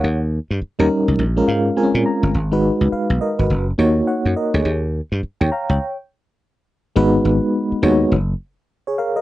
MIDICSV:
0, 0, Header, 1, 4, 480
1, 0, Start_track
1, 0, Tempo, 576923
1, 32, Time_signature, 4, 2, 24, 8
1, 7667, End_track
2, 0, Start_track
2, 0, Title_t, "FM electric piano"
2, 0, Program_c, 0, 5
2, 0, Control_c, 0, 64, 127
2, 0, Note_on_c, 0, 73, 56
2, 0, Note_on_c, 0, 78, 62
2, 42, Control_c, 0, 64, 0
2, 168, Note_off_c, 0, 78, 0
2, 170, Note_off_c, 0, 73, 0
2, 178, Control_c, 0, 64, 127
2, 656, Note_on_c, 0, 55, 91
2, 658, Note_on_c, 0, 61, 79
2, 661, Note_on_c, 0, 63, 83
2, 665, Note_on_c, 0, 70, 101
2, 947, Note_off_c, 0, 55, 0
2, 949, Note_off_c, 0, 61, 0
2, 950, Note_off_c, 0, 63, 0
2, 952, Note_off_c, 0, 70, 0
2, 1004, Control_c, 0, 64, 0
2, 1131, Control_c, 0, 64, 127
2, 1136, Note_on_c, 0, 56, 87
2, 1139, Note_on_c, 0, 61, 79
2, 1142, Note_on_c, 0, 65, 72
2, 1145, Note_on_c, 0, 70, 95
2, 1230, Note_on_c, 0, 77, 72
2, 1364, Note_off_c, 0, 56, 0
2, 1366, Note_off_c, 0, 61, 0
2, 1367, Note_off_c, 0, 65, 0
2, 1368, Note_off_c, 0, 70, 0
2, 1454, Note_off_c, 0, 77, 0
2, 1468, Note_on_c, 0, 56, 82
2, 1470, Note_on_c, 0, 60, 62
2, 1473, Note_on_c, 0, 80, 70
2, 1474, Note_on_c, 0, 65, 76
2, 1479, Note_on_c, 0, 70, 88
2, 1525, Note_on_c, 0, 61, 78
2, 1538, Note_off_c, 0, 60, 0
2, 1696, Note_off_c, 0, 80, 0
2, 1712, Note_on_c, 0, 82, 70
2, 1874, Note_off_c, 0, 56, 0
2, 1877, Note_off_c, 0, 65, 0
2, 1880, Note_off_c, 0, 70, 0
2, 1903, Note_off_c, 0, 61, 0
2, 1935, Note_off_c, 0, 82, 0
2, 1964, Control_c, 0, 64, 0
2, 2093, Note_on_c, 0, 56, 83
2, 2097, Note_on_c, 0, 63, 73
2, 2101, Note_on_c, 0, 66, 82
2, 2104, Note_on_c, 0, 71, 96
2, 2117, Control_c, 0, 64, 127
2, 2192, Note_off_c, 0, 66, 0
2, 2193, Note_off_c, 0, 71, 0
2, 2386, Note_off_c, 0, 56, 0
2, 2388, Note_off_c, 0, 63, 0
2, 2432, Note_on_c, 0, 77, 67
2, 2437, Note_on_c, 0, 71, 60
2, 2660, Note_off_c, 0, 77, 0
2, 2662, Note_off_c, 0, 71, 0
2, 2670, Note_on_c, 0, 75, 72
2, 2676, Note_on_c, 0, 70, 60
2, 2812, Note_off_c, 0, 75, 0
2, 2815, Note_off_c, 0, 70, 0
2, 2819, Note_on_c, 0, 71, 68
2, 2823, Note_on_c, 0, 66, 53
2, 2923, Control_c, 0, 64, 0
2, 3048, Note_off_c, 0, 71, 0
2, 3050, Note_off_c, 0, 66, 0
2, 3050, Control_c, 0, 64, 127
2, 3145, Note_on_c, 0, 58, 82
2, 3149, Note_on_c, 0, 63, 76
2, 3152, Note_on_c, 0, 66, 72
2, 3155, Note_on_c, 0, 73, 94
2, 3384, Note_off_c, 0, 73, 0
2, 3389, Note_on_c, 0, 78, 65
2, 3394, Note_on_c, 0, 73, 58
2, 3618, Note_off_c, 0, 78, 0
2, 3621, Note_off_c, 0, 73, 0
2, 3631, Note_on_c, 0, 75, 73
2, 3636, Note_on_c, 0, 70, 62
2, 3772, Note_off_c, 0, 75, 0
2, 3775, Note_off_c, 0, 70, 0
2, 3778, Note_on_c, 0, 73, 63
2, 3782, Note_on_c, 0, 68, 55
2, 3784, Note_off_c, 0, 58, 0
2, 3786, Note_off_c, 0, 63, 0
2, 3788, Note_off_c, 0, 66, 0
2, 3884, Control_c, 0, 64, 0
2, 4007, Note_off_c, 0, 73, 0
2, 4009, Note_off_c, 0, 68, 0
2, 4027, Control_c, 0, 64, 127
2, 4498, Note_on_c, 0, 79, 67
2, 4503, Note_on_c, 0, 73, 59
2, 4586, Note_off_c, 0, 79, 0
2, 4589, Note_off_c, 0, 73, 0
2, 4591, Note_on_c, 0, 82, 72
2, 4597, Note_on_c, 0, 77, 55
2, 4732, Note_off_c, 0, 82, 0
2, 4735, Note_off_c, 0, 77, 0
2, 4742, Note_on_c, 0, 79, 64
2, 4746, Note_on_c, 0, 73, 56
2, 4843, Control_c, 0, 64, 0
2, 4969, Note_off_c, 0, 79, 0
2, 4971, Note_off_c, 0, 73, 0
2, 5787, Note_on_c, 0, 56, 106
2, 5790, Note_on_c, 0, 59, 94
2, 5793, Note_on_c, 0, 63, 99
2, 5795, Note_on_c, 0, 66, 89
2, 5799, Note_on_c, 0, 71, 115
2, 5966, Control_c, 0, 64, 127
2, 6252, Note_off_c, 0, 56, 0
2, 6253, Note_off_c, 0, 59, 0
2, 6255, Note_off_c, 0, 63, 0
2, 6256, Note_off_c, 0, 66, 0
2, 6258, Note_off_c, 0, 71, 0
2, 6508, Note_on_c, 0, 56, 86
2, 6510, Note_on_c, 0, 59, 88
2, 6512, Note_on_c, 0, 63, 86
2, 6515, Note_on_c, 0, 66, 85
2, 6517, Note_on_c, 0, 73, 96
2, 6750, Note_off_c, 0, 56, 0
2, 6751, Note_off_c, 0, 59, 0
2, 6752, Note_off_c, 0, 63, 0
2, 6754, Note_off_c, 0, 66, 0
2, 6754, Note_off_c, 0, 73, 0
2, 6760, Control_c, 0, 64, 0
2, 6913, Control_c, 0, 64, 127
2, 7381, Note_on_c, 0, 73, 64
2, 7387, Note_on_c, 0, 68, 56
2, 7468, Note_off_c, 0, 73, 0
2, 7471, Note_off_c, 0, 68, 0
2, 7473, Note_on_c, 0, 77, 75
2, 7479, Note_on_c, 0, 70, 62
2, 7613, Note_off_c, 0, 77, 0
2, 7616, Note_off_c, 0, 70, 0
2, 7621, Note_on_c, 0, 75, 69
2, 7627, Note_on_c, 0, 70, 60
2, 7667, Note_off_c, 0, 70, 0
2, 7667, Note_off_c, 0, 75, 0
2, 7667, End_track
3, 0, Start_track
3, 0, Title_t, "Slap bass"
3, 0, Program_c, 1, 36
3, 31, Note_on_c, 1, 39, 87
3, 318, Note_off_c, 1, 39, 0
3, 420, Note_on_c, 1, 43, 85
3, 488, Note_off_c, 1, 43, 0
3, 661, Note_on_c, 1, 39, 92
3, 728, Note_off_c, 1, 39, 0
3, 898, Note_on_c, 1, 37, 81
3, 966, Note_off_c, 1, 37, 0
3, 988, Note_on_c, 1, 34, 102
3, 1167, Note_off_c, 1, 34, 0
3, 1230, Note_on_c, 1, 44, 85
3, 1408, Note_off_c, 1, 44, 0
3, 1619, Note_on_c, 1, 46, 101
3, 1687, Note_off_c, 1, 46, 0
3, 1855, Note_on_c, 1, 31, 92
3, 1924, Note_off_c, 1, 31, 0
3, 1950, Note_on_c, 1, 32, 97
3, 2238, Note_off_c, 1, 32, 0
3, 2336, Note_on_c, 1, 37, 83
3, 2405, Note_off_c, 1, 37, 0
3, 2578, Note_on_c, 1, 35, 83
3, 2646, Note_off_c, 1, 35, 0
3, 2820, Note_on_c, 1, 32, 84
3, 2888, Note_off_c, 1, 32, 0
3, 2911, Note_on_c, 1, 30, 87
3, 3089, Note_off_c, 1, 30, 0
3, 3149, Note_on_c, 1, 39, 97
3, 3328, Note_off_c, 1, 39, 0
3, 3540, Note_on_c, 1, 42, 97
3, 3608, Note_off_c, 1, 42, 0
3, 3777, Note_on_c, 1, 38, 82
3, 3846, Note_off_c, 1, 38, 0
3, 3869, Note_on_c, 1, 39, 104
3, 4157, Note_off_c, 1, 39, 0
3, 4258, Note_on_c, 1, 43, 86
3, 4326, Note_off_c, 1, 43, 0
3, 4500, Note_on_c, 1, 39, 89
3, 4568, Note_off_c, 1, 39, 0
3, 4737, Note_on_c, 1, 37, 88
3, 4806, Note_off_c, 1, 37, 0
3, 5791, Note_on_c, 1, 32, 97
3, 5969, Note_off_c, 1, 32, 0
3, 6031, Note_on_c, 1, 32, 103
3, 6141, Note_off_c, 1, 32, 0
3, 6512, Note_on_c, 1, 39, 92
3, 6689, Note_off_c, 1, 39, 0
3, 6752, Note_on_c, 1, 30, 100
3, 6929, Note_off_c, 1, 30, 0
3, 7667, End_track
4, 0, Start_track
4, 0, Title_t, "Muted slap bass strokes"
4, 511, Note_on_c, 9, 29, 50
4, 594, Note_off_c, 9, 29, 0
4, 2433, Note_on_c, 9, 29, 50
4, 2516, Note_off_c, 9, 29, 0
4, 4351, Note_on_c, 9, 29, 50
4, 4434, Note_off_c, 9, 29, 0
4, 6422, Note_on_c, 9, 29, 47
4, 6505, Note_off_c, 9, 29, 0
4, 7667, End_track
0, 0, End_of_file